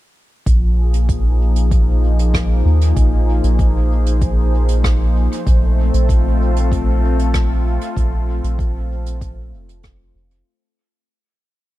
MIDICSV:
0, 0, Header, 1, 4, 480
1, 0, Start_track
1, 0, Tempo, 625000
1, 359, Time_signature, 4, 2, 24, 8
1, 9048, End_track
2, 0, Start_track
2, 0, Title_t, "Analog synth pad"
2, 0, Program_c, 0, 89
2, 363, Note_on_c, 0, 53, 73
2, 495, Note_on_c, 0, 68, 76
2, 556, Note_on_c, 0, 58, 70
2, 858, Note_on_c, 0, 63, 74
2, 1327, Note_on_c, 0, 72, 66
2, 4198, Note_off_c, 0, 58, 0
2, 4198, Note_on_c, 0, 57, 82
2, 4200, Note_off_c, 0, 68, 0
2, 4201, Note_off_c, 0, 53, 0
2, 4359, Note_on_c, 0, 60, 82
2, 4483, Note_on_c, 0, 69, 82
2, 4582, Note_on_c, 0, 65, 77
2, 5309, Note_off_c, 0, 63, 0
2, 8037, Note_off_c, 0, 60, 0
2, 8038, Note_off_c, 0, 69, 0
2, 8039, Note_off_c, 0, 57, 0
2, 8039, Note_off_c, 0, 65, 0
2, 8039, Note_off_c, 0, 72, 0
2, 9048, End_track
3, 0, Start_track
3, 0, Title_t, "Sub bass"
3, 0, Program_c, 1, 38
3, 356, Note_on_c, 1, 34, 91
3, 2015, Note_off_c, 1, 34, 0
3, 2037, Note_on_c, 1, 39, 82
3, 2250, Note_off_c, 1, 39, 0
3, 2277, Note_on_c, 1, 34, 95
3, 2616, Note_off_c, 1, 34, 0
3, 2638, Note_on_c, 1, 34, 87
3, 4056, Note_off_c, 1, 34, 0
3, 4199, Note_on_c, 1, 34, 95
3, 4538, Note_off_c, 1, 34, 0
3, 4560, Note_on_c, 1, 34, 82
3, 5977, Note_off_c, 1, 34, 0
3, 6117, Note_on_c, 1, 34, 95
3, 6456, Note_off_c, 1, 34, 0
3, 6480, Note_on_c, 1, 34, 83
3, 7316, Note_on_c, 1, 29, 79
3, 7327, Note_off_c, 1, 34, 0
3, 7775, Note_off_c, 1, 29, 0
3, 7795, Note_on_c, 1, 29, 97
3, 8008, Note_off_c, 1, 29, 0
3, 9048, End_track
4, 0, Start_track
4, 0, Title_t, "Drums"
4, 356, Note_on_c, 9, 36, 89
4, 357, Note_on_c, 9, 42, 51
4, 433, Note_off_c, 9, 36, 0
4, 434, Note_off_c, 9, 42, 0
4, 719, Note_on_c, 9, 42, 67
4, 796, Note_off_c, 9, 42, 0
4, 836, Note_on_c, 9, 36, 93
4, 837, Note_on_c, 9, 42, 52
4, 913, Note_off_c, 9, 36, 0
4, 914, Note_off_c, 9, 42, 0
4, 1197, Note_on_c, 9, 42, 64
4, 1274, Note_off_c, 9, 42, 0
4, 1316, Note_on_c, 9, 36, 90
4, 1316, Note_on_c, 9, 42, 53
4, 1393, Note_off_c, 9, 36, 0
4, 1393, Note_off_c, 9, 42, 0
4, 1682, Note_on_c, 9, 42, 58
4, 1759, Note_off_c, 9, 42, 0
4, 1797, Note_on_c, 9, 36, 100
4, 1798, Note_on_c, 9, 42, 53
4, 1801, Note_on_c, 9, 37, 85
4, 1873, Note_off_c, 9, 36, 0
4, 1875, Note_off_c, 9, 42, 0
4, 1878, Note_off_c, 9, 37, 0
4, 2160, Note_on_c, 9, 42, 61
4, 2237, Note_off_c, 9, 42, 0
4, 2276, Note_on_c, 9, 42, 57
4, 2277, Note_on_c, 9, 36, 99
4, 2353, Note_off_c, 9, 42, 0
4, 2354, Note_off_c, 9, 36, 0
4, 2641, Note_on_c, 9, 42, 60
4, 2718, Note_off_c, 9, 42, 0
4, 2758, Note_on_c, 9, 36, 96
4, 2758, Note_on_c, 9, 42, 57
4, 2834, Note_off_c, 9, 36, 0
4, 2835, Note_off_c, 9, 42, 0
4, 3121, Note_on_c, 9, 42, 60
4, 3198, Note_off_c, 9, 42, 0
4, 3235, Note_on_c, 9, 42, 53
4, 3238, Note_on_c, 9, 36, 98
4, 3312, Note_off_c, 9, 42, 0
4, 3315, Note_off_c, 9, 36, 0
4, 3598, Note_on_c, 9, 42, 69
4, 3675, Note_off_c, 9, 42, 0
4, 3718, Note_on_c, 9, 36, 101
4, 3720, Note_on_c, 9, 37, 96
4, 3721, Note_on_c, 9, 42, 54
4, 3794, Note_off_c, 9, 36, 0
4, 3797, Note_off_c, 9, 37, 0
4, 3798, Note_off_c, 9, 42, 0
4, 4089, Note_on_c, 9, 42, 58
4, 4166, Note_off_c, 9, 42, 0
4, 4198, Note_on_c, 9, 36, 95
4, 4198, Note_on_c, 9, 42, 56
4, 4275, Note_off_c, 9, 36, 0
4, 4275, Note_off_c, 9, 42, 0
4, 4561, Note_on_c, 9, 42, 56
4, 4638, Note_off_c, 9, 42, 0
4, 4678, Note_on_c, 9, 36, 97
4, 4680, Note_on_c, 9, 42, 59
4, 4755, Note_off_c, 9, 36, 0
4, 4757, Note_off_c, 9, 42, 0
4, 5041, Note_on_c, 9, 42, 67
4, 5118, Note_off_c, 9, 42, 0
4, 5158, Note_on_c, 9, 36, 94
4, 5163, Note_on_c, 9, 42, 59
4, 5234, Note_off_c, 9, 36, 0
4, 5240, Note_off_c, 9, 42, 0
4, 5523, Note_on_c, 9, 42, 64
4, 5600, Note_off_c, 9, 42, 0
4, 5636, Note_on_c, 9, 42, 55
4, 5638, Note_on_c, 9, 36, 103
4, 5638, Note_on_c, 9, 37, 90
4, 5712, Note_off_c, 9, 42, 0
4, 5714, Note_off_c, 9, 36, 0
4, 5715, Note_off_c, 9, 37, 0
4, 6000, Note_on_c, 9, 42, 60
4, 6077, Note_off_c, 9, 42, 0
4, 6117, Note_on_c, 9, 36, 92
4, 6121, Note_on_c, 9, 42, 54
4, 6194, Note_off_c, 9, 36, 0
4, 6198, Note_off_c, 9, 42, 0
4, 6483, Note_on_c, 9, 42, 60
4, 6560, Note_off_c, 9, 42, 0
4, 6596, Note_on_c, 9, 36, 99
4, 6602, Note_on_c, 9, 42, 49
4, 6673, Note_off_c, 9, 36, 0
4, 6679, Note_off_c, 9, 42, 0
4, 6959, Note_on_c, 9, 42, 57
4, 7036, Note_off_c, 9, 42, 0
4, 7076, Note_on_c, 9, 36, 98
4, 7076, Note_on_c, 9, 42, 58
4, 7153, Note_off_c, 9, 36, 0
4, 7153, Note_off_c, 9, 42, 0
4, 7441, Note_on_c, 9, 42, 61
4, 7517, Note_off_c, 9, 42, 0
4, 7549, Note_on_c, 9, 42, 57
4, 7555, Note_on_c, 9, 36, 109
4, 7557, Note_on_c, 9, 37, 89
4, 7626, Note_off_c, 9, 42, 0
4, 7632, Note_off_c, 9, 36, 0
4, 7634, Note_off_c, 9, 37, 0
4, 7917, Note_on_c, 9, 42, 56
4, 7993, Note_off_c, 9, 42, 0
4, 9048, End_track
0, 0, End_of_file